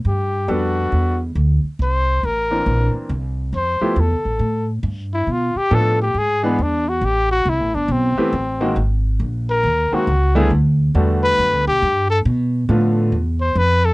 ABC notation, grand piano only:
X:1
M:4/4
L:1/8
Q:"Swing" 1/4=138
K:G
V:1 name="Grand piano"
z2 [G,B,DFA]3 z3 | z3 [E,_B,CD_B]3 z2 | z [=F,A,B,EG] z6 | z2 [=F,A,B,DA] z2 [E,^G,B,D^G] z2 |
z4 z [E,A,B,CG] z [_E,_A,_B,CF] | z4 z [_E,_A,_B,C_G] z [D,=G,=A,=B,=E] | z2 [D,G,A,B,F]3 z3 | z2 [D,=F,A,B,=F]2 z4 |]